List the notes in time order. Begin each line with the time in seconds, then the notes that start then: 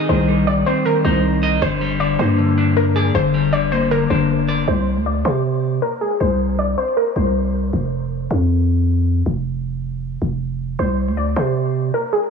Already playing: D#4 D#5
0.09 C2 D#3 C5
0.28 G3
0.47 D#3 D5
0.66 C4 C5
0.85 D#3 A#4
1.04 C2 D#4 C5
1.43 D#5
1.62 G1 D3 C5
1.81 G3
2.00 D3 D5
2.19 G2 A#3 C5
2.38 D3
2.58 D4
2.77 A#4
2.96 G#4 D5
3.15 G1 D3 C5
3.34 G3
3.53 D3 D5
3.72 A#3 C5
3.91 D3 A#4
4.10 G1 D4 C5
4.48 D5
4.68 C2 C5
4.96 D2
5.06 D5
5.25 C3 C5
5.82 A#4
6.01 G#4
6.20 C2 C5
6.59 D5
6.78 C5
6.97 A#4
7.16 C2 C5
7.73 F1
8.31 F2
9.26 F1
10.22 F1
10.79 C2 C5
11.08 D2
11.17 D5
11.36 C3 C5
11.94 A#4
12.13 G#4